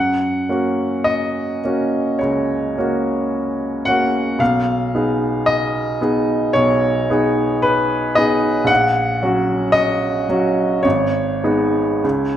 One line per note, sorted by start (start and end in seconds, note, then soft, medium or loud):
0.00 0.48 F#2 soft
0.00 1.06 F#5 medium
0.49 1.60 A#3 soft
0.49 1.60 C#4 soft
0.49 1.60 F#4 soft
1.04 2.19 D#5 medium
1.64 2.17 A#3 soft
1.64 2.17 C#4 soft
1.64 2.17 F#4 soft
2.19 2.75 C#2 soft
2.19 3.86 C#5 soft
2.78 3.83 A#3 soft
2.78 3.84 C#4 soft
2.78 3.84 F#4 soft
3.85 4.37 A#3 soft
3.85 4.37 C#4 soft
3.85 4.37 F#4 soft
3.85 4.40 F#5 medium
4.39 4.92 B1 soft
4.39 5.48 F5 medium
4.95 5.98 B3 soft
4.95 5.98 D#4 soft
4.95 5.98 G#4 soft
5.46 6.54 D#5 medium
6.01 6.51 B3 soft
6.01 6.51 D#4 soft
6.01 6.51 G#4 soft
6.53 7.08 B1 soft
6.53 7.63 C#5 medium
7.10 8.13 B3 soft
7.10 8.13 D#4 soft
7.10 8.14 G#4 soft
7.62 8.16 B4 medium
8.15 8.66 B3 soft
8.15 8.66 D#4 soft
8.15 8.66 G#4 soft
8.15 8.69 D#5 medium
8.64 9.18 A#1 medium
8.64 9.74 F#5 medium
9.22 10.25 F#3 soft
9.22 10.25 C#4 soft
9.22 10.25 F#4 soft
9.72 10.83 D#5 medium
10.29 10.80 F#3 soft
10.29 10.81 C#4 soft
10.29 10.81 F#4 soft
10.83 11.41 G#1 medium
10.83 12.37 C#5 medium
11.44 12.00 G#3 soft
11.44 12.00 B3 soft
11.44 12.00 D#4 soft
12.04 12.37 C#2 medium